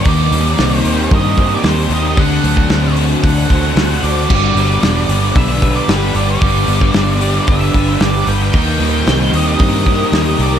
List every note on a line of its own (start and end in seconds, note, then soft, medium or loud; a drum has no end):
0.00 0.80 D5 medium
0.04 0.27 D#2 medium
0.04 2.15 D#3 medium
0.04 1.38 D#3 medium
0.04 2.16 A#3 medium
0.04 2.17 D#4 loud
0.04 kick loud
0.04 open hi-hat medium
0.31 0.54 D#2 medium
0.31 1.64 G3 medium
0.31 open hi-hat medium
0.56 0.81 C2 medium
0.56 1.90 A#3 medium
0.56 1.91 C4 medium
0.56 snare loud
0.56 open hi-hat medium
0.80 1.62 G4 medium
0.80 1.14 C5 medium
0.85 1.07 D#2 medium
0.85 1.37 G4 medium
0.85 open hi-hat medium
1.11 1.55 G2 loud
1.11 2.17 D#4 medium
1.11 2.18 A#4 medium
1.11 1.54 D#5 loud
1.11 kick loud
1.11 open hi-hat medium
1.37 1.91 G4 medium
1.37 1.89 C5 medium
1.37 kick medium
1.37 open hi-hat medium
1.55 1.67 D5 medium
1.63 1.86 D#2 medium
1.63 2.18 G3 medium
1.63 2.17 G4 medium
1.63 1.93 C5 medium
1.63 snare loud
1.63 open hi-hat medium
1.90 2.17 D#2 loud
1.90 2.18 G4 medium
1.90 2.17 C5 medium
1.90 2.06 D#5 loud
1.90 open hi-hat medium
2.07 2.19 D#5 loud
2.15 2.39 D2 medium
2.15 4.27 D3 medium
2.15 3.50 D3 medium
2.15 4.28 A3 medium
2.15 5.69 D4 medium
2.15 kick loud
2.15 open hi-hat medium
2.19 2.94 F#5 loud
2.43 2.66 D2 medium
2.43 3.76 F#3 medium
2.43 3.76 A3 medium
2.43 open hi-hat medium
2.57 kick medium
2.70 3.14 D2 medium
2.70 4.03 A3 medium
2.70 4.03 C4 medium
2.70 snare loud
2.70 open hi-hat medium
2.96 3.74 F#4 medium
2.96 3.49 F#4 medium
2.96 open hi-hat medium
3.22 3.45 D2 loud
3.22 5.35 D4 medium
3.22 4.30 A4 medium
3.22 4.06 F#5 medium
3.22 kick loud
3.22 open hi-hat medium
3.49 3.72 D2 medium
3.49 4.02 F#4 medium
3.49 4.01 C5 medium
3.49 kick medium
3.49 open hi-hat medium
3.75 3.98 D2 medium
3.75 4.29 A3 medium
3.75 4.29 F#4 medium
3.75 snare loud
3.75 open hi-hat medium
4.03 4.25 D2 medium
4.03 4.30 F#4 medium
4.03 4.29 C5 medium
4.03 4.15 D5 medium
4.03 open hi-hat medium
4.16 5.35 D5 medium
4.28 4.51 G1 medium
4.28 6.39 G2 medium
4.28 6.40 D3 medium
4.28 6.41 G3 medium
4.28 4.55 G3 medium
4.28 6.44 G3 medium
4.28 kick loud
4.28 crash loud
4.55 4.77 G1 medium
4.55 5.89 G3 medium
4.55 4.81 B3 medium
4.55 open hi-hat medium
4.82 5.05 E1 medium
4.82 6.15 B3 medium
4.82 6.15 D4 medium
4.82 snare loud
4.82 open hi-hat medium
5.08 5.31 G1 medium
5.08 5.61 B3 medium
5.08 5.89 G4 medium
5.08 open hi-hat medium
5.35 5.79 B1 loud
5.35 6.68 D4 medium
5.35 6.68 B4 medium
5.35 5.75 E5 loud
5.35 kick loud
5.35 open hi-hat medium
5.62 6.14 B3 medium
5.62 6.13 B4 medium
5.62 kick medium
5.62 open hi-hat medium
5.75 5.89 D5 medium
5.88 6.10 G1 medium
5.88 6.43 G3 medium
5.88 7.20 G4 medium
5.88 6.16 B4 medium
5.88 snare loud
5.88 open hi-hat medium
6.14 6.37 G1 medium
6.14 7.21 B3 medium
6.14 7.47 B4 medium
6.14 6.29 D5 medium
6.14 open hi-hat medium
6.30 7.48 D5 medium
6.41 6.64 G1 loud
6.41 8.52 G2 medium
6.41 8.52 D3 loud
6.41 7.74 G3 medium
6.41 6.68 G3 medium
6.41 8.53 G3 loud
6.41 kick loud
6.41 open hi-hat medium
6.68 6.90 G1 medium
6.68 8.00 G3 medium
6.68 6.93 B3 medium
6.68 open hi-hat medium
6.81 kick medium
6.94 7.39 G1 medium
6.94 8.27 B3 medium
6.94 8.28 D4 medium
6.94 snare loud
6.94 open hi-hat medium
7.21 7.74 B3 medium
7.21 7.99 G4 medium
7.21 open hi-hat medium
7.47 7.69 G1 loud
7.47 8.53 D4 medium
7.47 8.54 B4 medium
7.47 8.01 E5 loud
7.47 kick loud
7.47 open hi-hat medium
7.73 7.96 G1 loud
7.73 8.26 B3 medium
7.73 8.25 B4 medium
7.73 kick medium
7.73 open hi-hat medium
8.00 8.23 G1 medium
8.00 8.54 G3 medium
8.00 8.53 G4 medium
8.00 8.29 D5 medium
8.00 snare loud
8.00 open hi-hat medium
8.26 8.49 G1 loud
8.26 8.54 B3 medium
8.26 8.53 B4 medium
8.26 8.41 G5 loud
8.26 open hi-hat medium
8.42 9.37 G5 loud
8.53 8.76 D#2 loud
8.53 10.59 D#3 medium
8.53 9.86 D#3 medium
8.53 9.87 D#3 medium
8.53 10.59 A#3 medium
8.53 10.59 D#4 medium
8.53 kick loud
8.53 open hi-hat medium
8.80 9.02 D#2 medium
8.80 10.12 G3 medium
8.80 9.04 G3 medium
8.80 open hi-hat medium
9.06 9.29 C2 medium
9.06 10.39 G3 medium
9.06 10.59 C4 medium
9.06 snare loud
9.06 open hi-hat medium
9.32 9.55 D#2 medium
9.32 9.85 G4 medium
9.32 10.10 G4 medium
9.32 9.46 D#5 loud
9.32 open hi-hat medium
9.47 10.42 D#5 loud
9.59 10.03 G2 medium
9.59 10.59 C4 medium
9.59 10.59 A#4 medium
9.59 kick loud
9.59 open hi-hat medium
9.85 10.39 G4 medium
9.85 10.37 A#4 medium
9.85 kick medium
9.85 open hi-hat medium
10.11 10.34 D#2 medium
10.11 10.59 G3 medium
10.11 10.59 G4 medium
10.11 snare loud
10.11 open hi-hat medium
10.38 10.59 C2 medium
10.38 10.59 G4 medium
10.38 10.59 A#4 medium
10.38 open hi-hat medium
10.42 10.53 D5 medium
10.55 10.59 D5 medium